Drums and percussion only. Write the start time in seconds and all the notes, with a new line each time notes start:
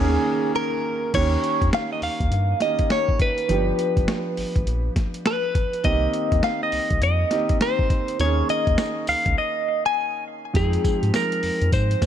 1.14 kick, closed hi-hat, crash
1.44 closed hi-hat
1.62 kick, closed hi-hat
1.73 snare, closed hi-hat
2.02 open hi-hat
2.20 kick, closed hi-hat
2.32 closed hi-hat
2.60 snare, closed hi-hat
2.79 kick, closed hi-hat
2.90 snare, closed hi-hat
3.09 kick
3.20 kick, closed hi-hat
3.38 closed hi-hat
3.49 closed hi-hat
3.79 closed hi-hat
3.97 kick, closed hi-hat
4.08 snare, closed hi-hat
4.37 open hi-hat
4.56 kick, closed hi-hat
4.67 closed hi-hat
4.96 kick, snare, closed hi-hat
5.14 closed hi-hat
5.26 snare, closed hi-hat
5.55 kick, closed hi-hat
5.73 closed hi-hat
5.84 kick, closed hi-hat
6.14 closed hi-hat
6.32 kick, closed hi-hat
6.43 snare, closed hi-hat
6.72 open hi-hat
6.90 kick, closed hi-hat
7.02 closed hi-hat
7.31 snare, closed hi-hat
7.49 kick, closed hi-hat
7.61 snare, closed hi-hat
7.79 kick
7.90 kick, closed hi-hat
8.08 closed hi-hat
8.20 closed hi-hat, tambourine
8.49 closed hi-hat
8.67 kick, closed hi-hat
8.78 snare, closed hi-hat, tambourine
9.07 open hi-hat, tambourine
9.26 kick, closed hi-hat
10.55 kick, closed hi-hat, tambourine
10.73 closed hi-hat
10.85 kick, closed hi-hat, tambourine
11.03 closed hi-hat
11.14 snare, closed hi-hat, tambourine
11.32 closed hi-hat
11.43 open hi-hat
11.62 closed hi-hat
11.72 kick, closed hi-hat, tambourine
11.91 closed hi-hat
12.02 kick, snare, closed hi-hat, tambourine